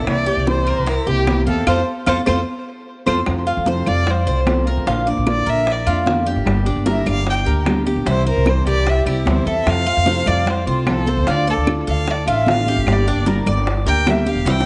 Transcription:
Already playing: E4
0.07 C2 C3 E3 A#3 C4 E4 D5, high bongo, high conga, claves
0.26 A#3 C4 E4 G4, high conga
0.37 C2
0.47 C3 E3 A#3 C4 E4 C5, high bongo, high conga
0.66 A#4, high conga, claves
0.77 C2
0.86 E4 A#4, muted nylon-string guitar stroke, high bongo, high conga
1.06 C2 A#3 C4 E4 G4, high conga
1.26 C3 E3 A#3 C4 E4, high bongo, low bongo, high conga, claves
1.46 E2 A#3 C4 E4 A4 F5, high conga
1.67 F2 A3 C4 F4 A4 C5, high bongo, high conga, claves
2.06 F2 A3 C4 F4 A4 C5, high bongo, high conga, claves
2.26 F2 A3 C4 F4 A4 C5, high bongo, high conga, claves
3.06 F2 A3 C4 F4 A4 C5, high bongo, high conga, claves
3.26 F2 C3 F3 A3 C4 F4, high bongo, high conga, claves
3.46 A3 C4 F4, high conga
3.57 F2
3.65 C3 F3 A3 C4 F4 C5, high bongo, high conga
3.70 C5
3.86 F2 D5 F5, high conga, low conga, claves
4.06 muted nylon-string guitar stroke, high bongo, high conga, low conga
4.10 C5
4.26 C2 A3 C4 F4 C5, high conga
4.45 C3 F3 A3 C4 F4, high bongo, low bongo, high conga, claves
4.66 A3 C4 F4 A#4
4.77 F2
4.86 A#1 D3 A#3 D4 F4, high bongo
5.06 A#3 D4 F4 D5, high bongo, high conga
5.17 A#1
5.26 D3 A#3 D4 F4 D5, high bongo, high conga, claves
5.46 A#1 A#4 E5, high conga
5.66 muted nylon-string guitar stroke, high bongo, high conga
5.72 D5
5.86 F2 A#3 D4 F4, high bongo, high conga, claves
6.06 D3 A#3 D4 F4, high bongo, low bongo, high conga
6.26 A#3 D4 F4 G4, high bongo
6.36 G1
6.45 G1 D3 G3 A#3 D4 G4, high bongo, high conga, claves
6.66 A#3 D4 G4, high conga
6.76 G1
6.86 D3 G3 A#3 D4 G4 A#4, high bongo, high conga
6.91 E5
7.06 G1 D5 F5, high conga, low conga, claves
7.25 muted nylon-string guitar stroke, high bongo, high conga
7.30 G5
7.45 D2 A#3 D4 G4 A#4, high conga
7.65 D3 G3 A#3 D4 G4, high bongo, low bongo, high conga, claves
7.85 A#3 D4 G4, high conga
7.96 A#1
8.06 C2 C3 E3 G3 C4 E4, high bongo
8.10 C5
8.26 G3 C4 E4 A#4 C5, high bongo, high conga
8.36 C2
8.46 C3 E3 G3 C4 E4 C5, high bongo, high conga, claves
8.66 C2 G4 D5, high conga
8.86 E5, muted nylon-string guitar stroke, high bongo, high conga
9.06 C2 G3 C4 E4 G4, high bongo, high conga, claves
9.26 D2 C3 E3 G3 C4 E4, high bongo, low bongo, high conga
9.30 C5
9.46 E2 G3 C4 E4 A4 E5, high bongo
9.66 F2 C3 F3 A3 C4 F4 F5, high bongo, high conga, claves
9.86 A3 C4 F4, high conga
9.97 F2
10.06 C3 F3 A3 C4 F4 C5, high bongo, high conga
10.26 F2 D5 F5, high conga, low conga, claves
10.46 C5, muted nylon-string guitar stroke, high bongo, high conga, low conga
10.66 C2 A3 C4 F4 C5, high conga
10.87 C3 F3 A3 C4 F4 A4, high bongo, low bongo, high conga, claves
11.06 A3 C4 F4 A4 C5, high conga
11.17 D2
11.27 D2 D3 A3 D4 F4 D5, high bongo
11.47 A3 D4 F4 A4 D5, high bongo, high conga
11.57 D2
11.67 D3 A3 D4 F4, high bongo, high conga, claves
11.87 D2 A4 F5, high conga
12.07 D5, muted nylon-string guitar stroke, high bongo, high conga
12.26 A1 A3 D4 F4 E5, high bongo, high conga, claves
12.46 D3 A3 D4 F4, high bongo, low bongo, high conga
12.51 F5
12.66 A3 D4 F4 G4, high bongo, high conga
12.77 G#1
12.86 G1 D3 G3 A#3 D4 G4, high bongo, claves
12.92 D5
13.07 A#3 D4 G4, high conga
13.16 G1
13.25 D3 G3 A#3 D4 G4 A#4, high bongo, high conga
13.46 G1 D5, high conga, low conga, claves
13.66 muted nylon-string guitar stroke, high bongo, high conga
13.85 D2 A#3 D4 G4 A#4 G5, high conga
14.06 D3 G3 A#3 D4 G4, high bongo, low bongo, high conga, claves
14.10 E5
14.26 A#3 D4 G4 F5, high conga
14.36 E1
14.45 C2 C3 E3 G3 C4 E4, high bongo, high conga
14.50 G5
14.60 high bongo

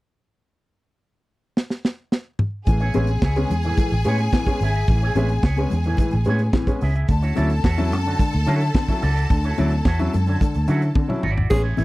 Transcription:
1.57 snare
1.70 snare
1.85 snare
2.12 snare
2.39 mid tom
2.67 A1 A2 E3 G#4 G#5, muted clean electric guitar stroke, kick, closed hi-hat, muted conga
2.80 B3 C#4 E4 G#4 C#5, closed hi-hat
2.94 A1 G#3 B3 C#4 E4 G#4 E5, closed hi-hat, muted conga, high conga
3.07 muted clean electric guitar stroke, closed hi-hat
3.22 C#2 E4 G#4 C#5, kick, snare, muted conga
3.36 G#3 B3 C#4, muted clean electric guitar stroke, closed hi-hat, high conga
3.50 E2, muted clean electric guitar stroke, closed hi-hat, muted conga, low conga
3.63 A2 E3 E4 G#4 C#5, closed hi-hat
3.77 A2 E3, muted clean electric guitar stroke, kick, closed hi-hat, muted conga, low conga
3.90 A1, muted clean electric guitar stroke, closed hi-hat
4.04 A2 G#3 B3 C#4 E4 G#4 C#5, closed hi-hat, muted conga
4.19 B3 C#4, muted clean electric guitar stroke, closed hi-hat
4.33 A2 E3, muted clean electric guitar stroke, kick, snare, muted conga, high conga
4.47 G#3 B3 C#4, muted clean electric guitar stroke, kick, closed hi-hat
4.61 G#1 B3 C#4 E4 G#4 E5, open hi-hat, muted conga
4.75 E4 G#4 E5, closed hi-hat
4.88 A1 A2 E3, muted clean electric guitar stroke, kick, closed hi-hat
5.01 B3 C#4 E4 G#4 C#5, closed hi-hat
5.15 A1 G#3 B3 C#4 E4 G#4 E5, closed hi-hat, high conga
5.29 muted clean electric guitar stroke, closed hi-hat
5.43 C#2 E4 G#4 C#5, kick, snare
5.57 G#3 B3 C#4, muted clean electric guitar stroke, closed hi-hat, high conga
5.70 E2, muted clean electric guitar stroke, closed hi-hat, muted conga, low conga
5.84 A2 E3 E4 G#4 C#5, closed hi-hat
5.97 A2 E3, muted clean electric guitar stroke, kick, closed hi-hat, muted conga, low conga
6.11 A1, muted clean electric guitar stroke, closed hi-hat
6.25 A2 G#3 B3 C#4 E4, closed hi-hat, muted conga
6.29 G#4 C#5
6.39 B3 C#4, muted clean electric guitar stroke, closed hi-hat
6.53 A2 E3, muted clean electric guitar stroke, kick, snare, muted conga, high conga
6.67 G#3 B3 C#4, muted clean electric guitar stroke, kick, closed hi-hat
6.81 C#2 B3 C#4 E4 G#4 E5, open hi-hat
6.95 E4 G#4 E5, closed hi-hat
7.08 D2 D3 A4 A5, muted clean electric guitar stroke, kick, closed hi-hat, muted conga
7.22 C#4 E4 F#4 C#5, closed hi-hat
7.36 D2 F#3 C#4 E4 F#4 D5, closed hi-hat, high conga
7.50 muted clean electric guitar stroke, closed hi-hat
7.64 E2 E4 F#4 C#5, kick, snare, muted conga
7.78 F#3 C#4 E4, muted clean electric guitar stroke, closed hi-hat, high conga
7.92 F#2, muted clean electric guitar stroke, closed hi-hat, low conga
8.05 D3 E4 F#4 C#5, closed hi-hat
8.19 D3, muted clean electric guitar stroke, kick, closed hi-hat, low conga
8.33 D2, muted clean electric guitar stroke, closed hi-hat
8.46 D3 F#3 C#4 E4 F#4 C#5, closed hi-hat
8.60 C#4 E4, muted clean electric guitar stroke, closed hi-hat
8.75 D3, muted clean electric guitar stroke, kick, snare, muted conga, high conga
8.88 F#3 C#4 E4, muted clean electric guitar stroke, kick, closed hi-hat
9.01 C#2 C#4 E4 F#4 D5, snare, open hi-hat, muted conga
9.15 E4 F#4 D5, closed hi-hat
9.30 D2 D3, muted clean electric guitar stroke, kick, closed hi-hat, muted conga
9.44 C#4 E4 F#4 C#5, closed hi-hat
9.58 D2 F#3 C#4 E4 F#4 D5, closed hi-hat, high conga
9.71 muted clean electric guitar stroke, closed hi-hat
9.85 E2 E4 F#4 C#5, kick, snare, muted conga
9.99 F#3 C#4 E4, muted clean electric guitar stroke, closed hi-hat, high conga
10.14 F#2, muted clean electric guitar stroke, closed hi-hat, low conga
10.27 D3 E4 F#4 C#5, closed hi-hat
10.41 D3, muted clean electric guitar stroke, kick, closed hi-hat, muted conga, low conga
10.54 D2, muted clean electric guitar stroke, closed hi-hat
10.68 D3 F#3 C#4 E4 F#4 C#5, closed hi-hat
10.82 C#4 E4, muted clean electric guitar stroke, closed hi-hat
10.95 D3, muted clean electric guitar stroke, kick, high tom, muted conga, high conga
11.08 F#3 C#4 E4, muted clean electric guitar stroke, mid tom, high conga
11.22 G#1 C#4 E4 F#4 D5, mid tom, muted conga
11.36 E4 F#4 D5, floor tom
11.50 A1 G#3 B3 C#4 G#4, muted clean electric guitar stroke, kick, crash, low conga
11.63 E4 G#4 C#5
11.77 A1 A2 E3 E4 G#4 C#5, closed hi-hat, muted conga, high conga

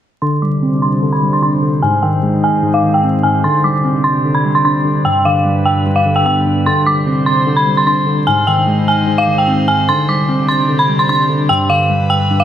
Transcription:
0.22 C3 D3 G3 D4 C5 C6
0.42 G3 D6
0.62 C4
0.82 C6
1.02 D3
1.12 B5
1.23 G3
1.33 C6
1.42 D4 C6
1.62 D3
1.82 G#2 G#3 D#4 G#5
2.03 D#3 G5
2.23 G#3
2.44 G#5
2.63 G#2
2.74 F5
2.83 D#3
2.94 G5
3.04 C4
3.23 G#2 G#5
3.44 C3 D3 G3 D4 C6
3.64 G3 D6
3.84 C4
4.04 C6
4.25 D3
4.34 B5
4.45 G3
4.55 C6
4.64 D4 C6
4.85 D3
5.05 G2 G3 B4 G5
5.25 D3 F5
5.45 G3
5.65 G5
5.86 G2
5.96 F5
6.06 D3
6.16 G5
6.25 B3 G5
6.46 G2
6.66 C3 D3 C5 C6
6.86 G3 D6
7.07 C4
7.26 C6
7.47 D3
7.57 B5
7.67 G3
7.77 C6
7.87 D4 C6
8.07 D3
8.27 G#2 G#3 D#4 C5 G#5
8.47 D#3 G5
8.67 G#3
8.88 G#5
9.07 G#2
9.18 F5
9.27 D#3
9.38 G5
9.48 C4
9.68 G#2 G#5
9.88 C3 D3 G3 D4 C6
10.08 G3 D6
10.29 C4
10.48 C6
10.69 D3
10.79 B5
10.89 G3
10.99 C6
11.09 D4 C6
11.29 D3
11.49 G2 B4 G5
11.69 D3 F5
11.90 G3
12.10 G5
12.30 G2
12.40 F5

